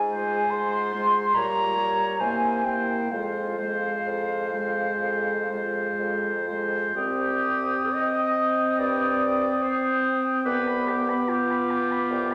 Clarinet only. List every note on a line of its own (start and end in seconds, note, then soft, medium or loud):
0.10 0.92 F4 soft
0.94 1.35 F4 soft
1.36 1.77 G4 soft
1.78 2.20 G4 soft
2.21 2.64 E4 soft
2.66 3.11 E4 soft
3.12 3.58 F4 soft
3.59 4.53 F4 soft
4.55 5.49 F4 soft
5.50 6.46 F4 soft
6.47 6.94 F4 soft
6.95 7.94 G4 medium
7.93 8.80 D#5 medium
8.79 9.64 D5 medium
9.62 10.28 C5 medium
10.45 10.88 B4 medium
10.86 11.30 G4 medium
11.28 12.34 F4 medium